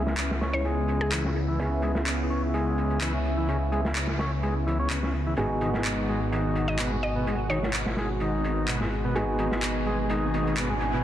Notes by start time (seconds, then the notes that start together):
Already playing: C#2 C#3 B3 C#4 E4 G#4
0.07 snare
0.17 clap, closed hi-hat
0.31 snare
0.41 C#4, snare, closed hi-hat
0.53 C#5
0.65 G#3, closed hi-hat
0.88 closed hi-hat
1.01 G#4
1.12 E3, clap, closed hi-hat
1.24 C#3, snare
1.35 closed hi-hat
1.48 E3
1.59 C#3 B3 C#4 E4 G#4, closed hi-hat
1.82 G#3, closed hi-hat
1.95 snare
2.07 clap
2.30 C#4, closed hi-hat
2.54 G#3, closed hi-hat
2.78 closed hi-hat
2.90 closed hi-hat
3.01 E3, clap
3.14 C#3
3.25 closed hi-hat
3.37 E3
3.48 C#3, closed hi-hat
3.72 G#3, closed hi-hat
3.85 snare
3.96 clap, closed hi-hat
4.07 snare
4.19 C#4, snare, closed hi-hat
4.43 G#3, closed hi-hat
4.67 E3, closed hi-hat
4.79 C#4
4.90 C#3, clap, closed hi-hat
5.03 C#3, snare
5.14 closed hi-hat
5.27 E3
5.37 G#1 G#2 B2 G#3 B3 D#4 F#4 G#4, closed hi-hat
5.61 D#3, closed hi-hat
5.74 snare
5.85 clap
6.08 G#3, closed hi-hat
6.32 D#3, closed hi-hat
6.55 closed hi-hat
6.68 D#5, closed hi-hat
6.79 B2, clap, closed hi-hat
6.92 G#2
7.03 D#5, closed hi-hat
7.16 B2
7.27 G#2, closed hi-hat
7.49 D#3 C#5, closed hi-hat
7.63 snare
7.73 clap, closed hi-hat
7.86 snare
7.97 G#3, snare, closed hi-hat
8.20 D#3, closed hi-hat
8.44 closed hi-hat
8.68 B2, clap, closed hi-hat
8.81 G#2, snare
8.93 closed hi-hat
9.05 B2
9.15 G#2 B3 D#4 F#4 G#4, closed hi-hat, riser
9.39 D#3, closed hi-hat
9.52 snare
9.62 clap, open hi-hat
9.86 G#3, closed hi-hat
10.09 D#3, closed hi-hat
10.34 closed hi-hat
10.47 closed hi-hat
10.57 B2, clap, closed hi-hat
10.70 G#2
10.81 closed hi-hat
10.93 B2